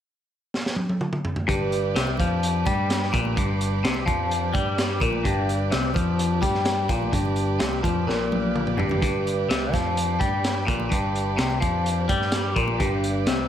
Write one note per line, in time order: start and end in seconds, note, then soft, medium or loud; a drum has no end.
0.54 snare medium
0.66 snare medium
0.76 high tom medium
0.89 high tom medium
1.01 mid tom medium
1.13 mid tom medium
1.25 floor tom medium
1.36 floor tom loud
1.47 1.92 G1 medium
1.47 1.94 G2 loud
1.47 13.48 D4 medium
1.47 13.48 G4 medium
1.47 13.48 B4 medium
1.47 13.48 D5 medium
1.47 kick loud
1.47 closed hi-hat medium
1.72 closed hi-hat medium
1.95 2.17 C2 medium
1.95 2.18 C3 medium
1.95 snare loud
1.95 closed hi-hat medium
2.07 high conga medium
2.17 2.63 F2 medium
2.17 2.66 F3 medium
2.17 kick medium
2.17 closed hi-hat medium
2.17 high conga medium
2.17 low conga medium
2.43 closed hi-hat medium
2.66 3.10 G2 medium
2.66 3.12 G3 medium
2.66 kick loud
2.66 closed hi-hat medium
2.66 high conga medium
2.90 snare loud
2.90 closed hi-hat medium
3.02 snare soft
3.13 3.36 A#1 medium
3.13 3.36 A#2 loud
3.13 kick loud
3.13 closed hi-hat medium
3.13 low conga medium
3.25 high conga medium
3.37 3.81 G1 medium
3.37 3.83 G2 medium
3.37 kick loud
3.37 closed hi-hat medium
3.61 closed hi-hat medium
3.84 4.06 C2 medium
3.84 4.06 C3 medium
3.84 snare loud
3.84 closed hi-hat medium
3.94 high conga medium
4.06 4.51 F2 medium
4.06 4.53 F3 loud
4.06 kick medium
4.06 closed hi-hat medium
4.06 high conga medium
4.06 low conga medium
4.31 closed hi-hat medium
4.54 4.98 G2 medium
4.54 5.00 G3 loud
4.54 kick loud
4.54 closed hi-hat medium
4.54 high conga medium
4.78 snare loud
4.78 closed hi-hat medium
5.00 5.23 A#1 medium
5.00 5.24 A#2 medium
5.00 kick loud
5.00 closed hi-hat medium
5.00 low conga medium
5.12 high conga medium
5.25 5.69 G1 medium
5.25 5.71 G2 loud
5.25 kick medium
5.25 closed hi-hat medium
5.49 closed hi-hat medium
5.71 5.95 C2 medium
5.71 5.94 C3 loud
5.71 snare loud
5.71 closed hi-hat medium
5.83 high conga medium
5.94 6.40 F2 medium
5.94 6.41 F3 loud
5.94 kick loud
5.94 closed hi-hat medium
5.94 high conga medium
5.94 low conga medium
6.19 closed hi-hat medium
6.42 6.87 G2 medium
6.42 6.89 G3 loud
6.42 kick loud
6.42 closed hi-hat medium
6.42 high conga medium
6.54 snare soft
6.65 snare loud
6.65 closed hi-hat medium
6.89 7.12 A#1 medium
6.89 7.12 A#2 medium
6.89 kick loud
6.89 closed hi-hat medium
6.89 low conga medium
7.02 high conga medium
7.12 7.57 G1 medium
7.12 7.59 G2 loud
7.12 kick medium
7.12 closed hi-hat medium
7.25 low conga medium
7.36 closed hi-hat medium
7.59 7.82 C2 medium
7.59 7.83 C3 loud
7.59 snare loud
7.59 closed hi-hat medium
7.59 high conga medium
7.73 high conga medium
7.83 8.06 F2 medium
7.83 8.06 F3 loud
7.83 kick medium
7.83 closed hi-hat medium
7.83 high conga medium
7.83 low conga medium
8.07 8.74 A#1 medium
8.07 8.78 A#2 loud
8.07 snare medium
8.32 high tom medium
8.32 high conga medium
8.56 mid tom medium
8.67 mid tom medium
8.77 9.00 G1 medium
8.77 9.01 G2 loud
8.77 floor tom medium
8.77 low conga medium
8.89 floor tom medium
8.89 high conga medium
9.02 9.46 G1 medium
9.02 9.48 G2 loud
9.02 kick loud
9.02 closed hi-hat medium
9.27 closed hi-hat medium
9.49 9.71 C2 medium
9.49 9.73 C3 loud
9.49 snare loud
9.49 closed hi-hat medium
9.62 high conga medium
9.73 10.17 F2 medium
9.73 10.19 F3 loud
9.73 kick medium
9.73 snare soft
9.73 closed hi-hat medium
9.73 high conga medium
9.73 low conga medium
9.97 closed hi-hat medium
10.20 10.64 G2 medium
10.20 10.66 G3 loud
10.20 kick loud
10.20 closed hi-hat medium
10.20 high conga medium
10.44 snare loud
10.44 closed hi-hat medium
10.67 10.90 A#1 medium
10.67 10.90 A#2 loud
10.67 kick loud
10.67 closed hi-hat medium
10.67 low conga medium
10.80 high conga medium
10.90 11.36 G1 medium
10.90 11.37 G2 loud
10.90 kick loud
10.90 closed hi-hat medium
11.15 closed hi-hat medium
11.37 11.60 C2 medium
11.37 11.60 C3 loud
11.37 snare loud
11.37 closed hi-hat medium
11.50 high conga medium
11.61 12.06 F2 medium
11.61 12.08 F3 loud
11.61 kick loud
11.61 closed hi-hat medium
11.61 high conga medium
11.61 low conga medium
11.86 closed hi-hat medium
12.09 12.53 G2 medium
12.09 12.56 G3 loud
12.09 kick loud
12.09 closed hi-hat medium
12.09 high conga medium
12.22 snare soft
12.32 snare loud
12.32 closed hi-hat medium
12.56 12.78 A#1 medium
12.56 12.79 A#2 loud
12.56 kick loud
12.56 closed hi-hat medium
12.56 low conga medium
12.68 high conga medium
12.80 13.24 G1 medium
12.80 13.26 G2 loud
12.80 kick medium
12.80 closed hi-hat medium
13.04 closed hi-hat medium
13.27 13.48 C2 medium
13.27 13.48 C3 loud
13.27 snare loud
13.27 closed hi-hat medium
13.37 high conga medium